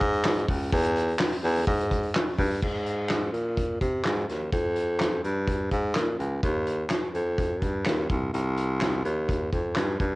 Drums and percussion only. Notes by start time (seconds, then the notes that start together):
0.01 kick, hi-hat pedal, open hi-hat
0.13 open hi-hat
0.25 snare, clap, hi-hat pedal, open hi-hat
0.37 hi-hat pedal
0.48 kick, hi-hat pedal, open hi-hat
0.60 open hi-hat
0.72 kick, hi-hat pedal, open hi-hat
0.85 hi-hat pedal
0.96 hi-hat pedal, open hi-hat
1.08 open hi-hat
1.19 snare, clap, hi-hat pedal, open hi-hat
1.32 hi-hat pedal, open hi-hat
1.44 hi-hat pedal, open hi-hat
1.56 hi-hat pedal, open hi-hat
1.67 kick, hi-hat pedal, open hi-hat
1.80 hi-hat pedal
1.91 kick, hi-hat pedal, open hi-hat
2.03 open hi-hat
2.15 snare, clap, hi-hat pedal, open hi-hat
2.27 hi-hat pedal, open hi-hat
2.38 kick, hi-hat pedal, open hi-hat
2.51 hi-hat pedal, open hi-hat
2.62 kick, crash
2.86 closed hi-hat
3.09 snare, clap, closed hi-hat
3.34 closed hi-hat
3.57 kick, closed hi-hat
3.81 kick, closed hi-hat
4.04 snare, clap, closed hi-hat
4.29 snare, closed hi-hat
4.52 kick, closed hi-hat
4.76 closed hi-hat
5.00 snare, clap, closed hi-hat
5.24 closed hi-hat
5.48 kick, closed hi-hat
5.71 kick, closed hi-hat
5.95 snare, clap, closed hi-hat
6.20 closed hi-hat
6.43 kick, closed hi-hat
6.67 closed hi-hat
6.90 snare, clap, closed hi-hat
7.15 closed hi-hat
7.38 kick, closed hi-hat
7.62 kick, closed hi-hat
7.86 snare, clap, closed hi-hat
8.10 kick, closed hi-hat
8.34 closed hi-hat
8.57 closed hi-hat
8.81 snare, clap, closed hi-hat
9.05 closed hi-hat
9.29 kick, closed hi-hat
9.52 kick, closed hi-hat
9.76 snare, clap, closed hi-hat
10.00 kick, closed hi-hat